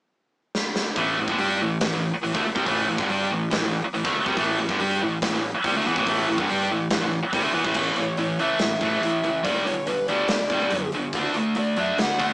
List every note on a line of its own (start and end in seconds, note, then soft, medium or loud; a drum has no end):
0.55 snare medium
0.76 snare medium
0.96 1.16 A1 medium
0.96 1.16 A2 medium
0.96 1.16 E3 medium
0.96 1.18 A3 medium
0.96 kick loud
0.96 open hi-hat medium
1.17 1.28 A1 medium
1.17 1.28 A2 medium
1.17 1.29 E3 medium
1.28 1.39 G1 medium
1.28 1.39 G2 medium
1.28 1.39 D3 medium
1.28 kick loud
1.38 1.59 G2 medium
1.38 1.60 G3 medium
1.38 1.60 D4 medium
1.38 1.60 G4 medium
1.38 open hi-hat medium
1.60 1.80 A1 medium
1.60 1.78 A2 medium
1.60 1.78 E3 medium
1.81 1.91 A1 medium
1.81 1.90 A2 medium
1.81 1.91 E3 medium
1.81 kick loud
1.81 snare loud
1.81 open hi-hat medium
1.91 2.12 A1 medium
1.91 2.09 A2 medium
1.91 2.09 E3 medium
2.12 muted distorted electric guitar stroke medium
2.12 muted picked electric bass stroke soft
2.22 2.34 A1 medium
2.22 2.33 A2 medium
2.22 2.33 E3 medium
2.22 open hi-hat medium
2.33 2.45 D2 medium
2.33 2.43 D3 medium
2.33 2.44 A3 loud
2.33 kick loud
2.44 muted distorted electric guitar stroke medium
2.44 muted picked electric bass stroke soft
2.55 2.66 C2 medium
2.55 2.64 C3 loud
2.55 2.65 G3 loud
2.55 kick medium
2.65 2.86 A1 medium
2.65 2.85 A2 medium
2.65 2.86 E3 medium
2.65 2.87 A3 medium
2.65 kick medium
2.65 open hi-hat medium
2.87 2.98 A1 medium
2.87 2.97 A2 medium
2.87 2.98 E3 medium
2.97 3.08 G1 loud
2.97 3.08 G2 medium
2.97 3.08 D3 loud
2.97 kick loud
3.07 3.29 G2 medium
3.07 3.29 G3 medium
3.07 3.29 D4 medium
3.07 3.29 G4 loud
3.07 open hi-hat medium
3.29 3.50 A1 medium
3.29 3.47 A2 medium
3.29 3.47 E3 medium
3.50 3.62 A1 medium
3.50 3.60 A2 medium
3.50 3.60 E3 medium
3.50 kick medium
3.50 snare loud
3.50 open hi-hat soft
3.61 3.82 A1 medium
3.61 3.79 A2 medium
3.61 3.79 E3 medium
3.83 muted distorted electric guitar stroke medium
3.83 muted picked electric bass stroke soft
3.93 4.04 A1 medium
3.93 4.04 A2 medium
3.93 4.04 E3 medium
3.93 open hi-hat medium
4.04 4.15 D2 medium
4.04 4.14 D3 medium
4.04 4.15 A3 medium
4.04 kick loud
4.15 muted distorted electric guitar stroke medium
4.15 muted picked electric bass stroke soft
4.26 4.36 C2 medium
4.26 4.36 C3 medium
4.26 4.36 G3 loud
4.26 kick loud
4.36 4.56 A1 medium
4.36 4.57 A2 medium
4.36 4.57 E3 medium
4.36 4.58 A3 loud
4.36 kick medium
4.36 open hi-hat medium
4.58 4.68 A1 medium
4.58 4.69 A2 medium
4.58 4.69 E3 medium
4.68 4.78 G1 loud
4.68 4.79 G2 medium
4.68 4.79 D3 medium
4.68 kick loud
4.80 4.99 G2 medium
4.80 5.00 G3 medium
4.80 5.00 D4 loud
4.80 5.00 G4 loud
4.80 open hi-hat medium
5.01 5.20 A1 medium
5.01 5.18 A2 medium
5.01 5.18 E3 medium
5.22 5.32 A1 medium
5.22 5.33 A2 medium
5.22 5.33 E3 medium
5.22 kick loud
5.22 snare loud
5.22 open hi-hat medium
5.34 5.52 A1 medium
5.34 5.50 A2 medium
5.34 5.50 E3 medium
5.55 muted distorted electric guitar stroke medium
5.55 muted picked electric bass stroke soft
5.64 5.74 C2 medium
5.64 5.75 C3 loud
5.64 5.75 G3 medium
5.64 kick loud
5.64 open hi-hat medium
5.76 5.85 D2 loud
5.76 5.85 D3 loud
5.76 5.86 A3 medium
5.86 5.95 E2 medium
5.86 5.96 E3 loud
5.86 5.96 B3 loud
5.96 6.06 A1 loud
5.96 6.06 A2 medium
5.96 6.06 E3 loud
5.96 kick medium
6.07 6.26 A1 medium
6.07 6.27 A2 medium
6.07 6.27 E3 loud
6.07 6.28 A3 medium
6.07 kick medium
6.07 open hi-hat medium
6.28 6.37 A1 medium
6.28 6.38 A2 medium
6.28 6.39 E3 medium
6.38 6.48 G1 medium
6.38 6.48 G2 medium
6.38 6.48 D3 medium
6.38 kick loud
6.49 6.69 G2 medium
6.49 6.69 G3 medium
6.49 6.70 D4 medium
6.49 6.70 G4 medium
6.49 open hi-hat medium
6.70 6.90 A1 medium
6.70 6.87 A2 medium
6.70 6.87 E3 medium
6.90 7.00 A1 medium
6.90 7.01 A2 medium
6.90 7.01 E3 medium
6.90 kick medium
6.90 snare loud
6.90 open hi-hat medium
7.02 7.21 A1 medium
7.02 7.18 A2 medium
7.02 7.19 E3 medium
7.23 muted distorted electric guitar stroke medium
7.23 muted picked electric bass stroke soft
7.33 7.42 C2 medium
7.33 7.42 C3 medium
7.33 7.43 G3 loud
7.33 kick loud
7.33 open hi-hat medium
7.43 7.53 D2 medium
7.43 7.53 D3 medium
7.43 7.53 A3 medium
7.53 7.64 E2 medium
7.53 7.64 E3 medium
7.53 7.64 B3 loud
7.65 7.74 A1 medium
7.65 7.75 A2 medium
7.65 7.75 E3 loud
7.65 kick medium
7.74 7.89 A1 medium
7.74 7.96 A2 medium
7.74 7.96 E3 medium
7.74 7.96 A3 medium
7.74 kick loud
7.74 crash medium
7.96 8.10 A1 medium
7.96 8.16 A2 medium
7.96 8.16 E3 medium
7.96 8.17 C#5 medium
7.96 open hi-hat medium
8.17 8.31 A1 medium
8.17 8.37 A2 medium
8.17 8.37 E3 medium
8.17 8.40 C#5 medium
8.17 open hi-hat medium
8.39 8.53 C#2 medium
8.39 8.59 A2 medium
8.39 8.59 E3 loud
8.39 8.59 A3 loud
8.39 9.48 E5 loud
8.39 open hi-hat medium
8.59 8.74 A1 medium
8.59 8.79 A2 medium
8.59 8.79 E3 medium
8.59 snare loud
8.59 open hi-hat medium
8.81 8.95 A2 medium
8.81 9.01 A2 medium
8.81 9.01 E3 medium
8.81 9.02 A3 loud
8.81 kick medium
8.81 open hi-hat medium
9.01 9.15 E2 medium
9.01 9.21 A2 medium
9.01 9.21 E3 medium
9.01 open hi-hat medium
9.23 9.37 C#2 medium
9.23 9.42 A2 medium
9.23 9.42 E3 medium
9.23 open hi-hat soft
9.45 9.59 B1 medium
9.45 9.65 G2 medium
9.45 9.65 D3 loud
9.45 9.65 G3 loud
9.45 9.66 D5 medium
9.45 kick loud
9.45 open hi-hat medium
9.65 9.79 B1 medium
9.65 9.85 G2 medium
9.65 9.86 D3 medium
9.65 9.87 C#5 medium
9.65 open hi-hat medium
9.86 10.01 B1 medium
9.86 10.07 G2 medium
9.86 10.07 D3 medium
9.86 10.08 B4 medium
9.86 open hi-hat medium
10.08 10.22 D2 medium
10.08 10.28 G2 medium
10.08 10.29 D3 medium
10.08 10.29 G3 loud
10.08 10.89 D5 medium
10.08 open hi-hat medium
10.28 10.42 B1 medium
10.28 10.48 G2 medium
10.28 10.49 D3 medium
10.28 snare loud
10.28 open hi-hat medium
10.50 10.71 G2 medium
10.50 10.64 B2 medium
10.50 10.71 D3 loud
10.50 10.71 G3 loud
10.50 kick medium
10.50 open hi-hat soft
10.71 10.85 F#2 medium
10.71 10.91 G2 medium
10.71 10.91 D3 medium
10.71 open hi-hat medium
10.92 11.06 B1 medium
10.92 11.12 G2 medium
10.92 11.12 D3 medium
10.92 open hi-hat soft
11.13 11.27 D2 medium
11.13 11.34 D3 medium
11.13 11.34 A3 medium
11.13 11.34 D4 medium
11.13 kick loud
11.13 open hi-hat medium
11.34 11.48 D2 medium
11.34 11.54 D3 medium
11.34 11.54 A3 medium
11.34 open hi-hat soft
11.55 11.70 D2 medium
11.55 11.75 D3 medium
11.55 11.75 A3 medium
11.55 open hi-hat medium
11.59 11.79 D5 medium
11.76 11.90 F#2 medium
11.76 11.97 D3 medium
11.76 11.96 A3 loud
11.76 11.97 D4 loud
11.76 12.00 E5 loud
11.76 open hi-hat medium
11.98 12.12 D2 medium
11.98 12.17 D3 medium
11.98 12.17 A3 medium
11.98 snare loud
11.98 open hi-hat medium
12.02 12.22 F#5 medium
12.19 12.33 D3 medium
12.19 12.33 A3 medium
12.19 12.33 D4 medium
12.19 kick medium
12.19 open hi-hat medium
12.24 12.33 F#5 medium